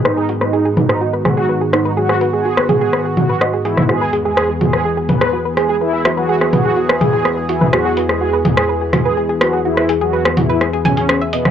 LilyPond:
<<
  \new Staff \with { instrumentName = "Synth arpeggio sound" } { \time 4/4 \key e \lydian \tempo 4 = 125 b'16 gis'16 fis'16 b'16 gis'16 gis'16 b'16 gis'16 fis'16 b'16 gis'16 gis'16 b'16 gis'16 fis'16 b'16 | gis'16 gis'16 b'16 gis'16 fis'16 b'16 gis'16 gis'16 b'16 gis'16 fis'16 b'16 dis''16 gis'16 gis'16 dis'16 | fis'16 b'16 gis'16 gis'16 b'16 gis'16 fis'16 b'16 gis'16 gis'16 b'16 gis'16 fis'16 b'16 gis'16 gis'16 | b'16 gis'16 fis'16 b'16 gis'16 gis'16 b'16 gis'16 fis'16 b'16 gis'16 gis'16 b'16 gis'16 fis'16 b'16 |
gis'16 gis'16 b'16 gis'16 fis'16 b'16 gis'16 gis'16 b'16 gis'16 fis'16 b'16 gis'16 gis'16 b'16 gis'16 | fis'16 b'16 gis'16 gis'16 b'16 gis'16 fis'16 b'16 gis'16 gis'16 gis''16 gis'16 gis'16 e''16 dis''16 b'16 | }
  \new Staff \with { instrumentName = "Analog polysynth" } { \time 4/4 \key e \lydian dis'8 r16 dis'8 r16 dis'8. r16 fis'8. r16 dis'8 | fis'8 r16 gis'8 r16 gis'8. r16 fis'8. r16 e'8 | gis'8 r16 gis'8 r16 gis'8. r16 b'8. r16 gis'8 | e'8 r16 fis'8 r16 fis'8. r16 gis'8. r16 e'8 |
fis'8 r16 gis'8 r4 r16 gis'8. r16 fis'8 | e'8 r16 fis'8 r16 e'8. r16 cis'8. r16 b8 | }
  \new Staff \with { instrumentName = "Analog synth pad" } { \clef bass \time 4/4 \key e \lydian << { <gis, dis fis'>1~ | <gis, dis fis'>1 | <e, e gis'>1~ | <e, e gis'>1~ |
<e, e gis'>1~ | <e, e gis'>1 | } \\ { b1~ | b1~ | b1~ | b1~ |
b1~ | b1 | } >> }
  \new DrumStaff \with { instrumentName = "Drums" } \drummode { \time 4/4 ss8 hh16 ss16 r8 <hh toml>16 ss16 r8 <hh ss toml>8 r8 <hh ss>8 | r16 ss16 hh8 r16 ss16 <hh toml>8 ss8 <hh toml>8 ss8 hh16 <ss toml>16 | ss8 hh8 ss8 <hh toml>16 ss16 r8 <hh toml>16 ss16 r8 <hh ss>8 | r8 <hh ss>8 r16 ss16 <hh toml>8 r16 ss16 <hh toml>8 ss8 hh16 toml16 |
ss8 hh16 ss16 r8 <hh toml>16 ss16 r8 <hh ss toml>8 r8 <hh ss>8 | r16 ss16 hh8 r16 ss16 <hh toml>8 ss8 <hh toml>16 hh16 ss8 hh16 <ss toml>16 | }
>>